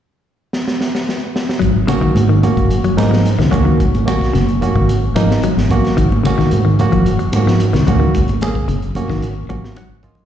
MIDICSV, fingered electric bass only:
0, 0, Header, 1, 2, 480
1, 0, Start_track
1, 0, Tempo, 544465
1, 1416, Time_signature, 4, 2, 24, 8
1, 9039, End_track
2, 0, Start_track
2, 0, Title_t, "Fingered electric bass"
2, 0, Program_c, 0, 33
2, 1425, Note_on_c, 0, 32, 94
2, 1617, Note_off_c, 0, 32, 0
2, 1895, Note_on_c, 0, 44, 79
2, 2191, Note_off_c, 0, 44, 0
2, 2263, Note_on_c, 0, 30, 88
2, 2458, Note_off_c, 0, 30, 0
2, 2621, Note_on_c, 0, 44, 82
2, 2982, Note_on_c, 0, 37, 87
2, 2996, Note_off_c, 0, 44, 0
2, 3276, Note_off_c, 0, 37, 0
2, 3352, Note_on_c, 0, 32, 86
2, 3545, Note_off_c, 0, 32, 0
2, 3829, Note_on_c, 0, 30, 82
2, 4123, Note_off_c, 0, 30, 0
2, 4189, Note_on_c, 0, 32, 81
2, 4482, Note_off_c, 0, 32, 0
2, 4542, Note_on_c, 0, 32, 79
2, 4740, Note_off_c, 0, 32, 0
2, 4909, Note_on_c, 0, 32, 78
2, 5105, Note_off_c, 0, 32, 0
2, 5273, Note_on_c, 0, 32, 83
2, 5467, Note_off_c, 0, 32, 0
2, 5749, Note_on_c, 0, 44, 75
2, 6043, Note_off_c, 0, 44, 0
2, 6107, Note_on_c, 0, 30, 87
2, 6303, Note_off_c, 0, 30, 0
2, 6453, Note_on_c, 0, 44, 84
2, 6820, Note_on_c, 0, 37, 93
2, 6834, Note_off_c, 0, 44, 0
2, 7114, Note_off_c, 0, 37, 0
2, 7183, Note_on_c, 0, 32, 82
2, 7378, Note_off_c, 0, 32, 0
2, 7649, Note_on_c, 0, 30, 85
2, 7946, Note_off_c, 0, 30, 0
2, 8014, Note_on_c, 0, 32, 73
2, 8307, Note_off_c, 0, 32, 0
2, 8376, Note_on_c, 0, 32, 75
2, 8570, Note_off_c, 0, 32, 0
2, 8723, Note_on_c, 0, 32, 76
2, 8921, Note_off_c, 0, 32, 0
2, 9039, End_track
0, 0, End_of_file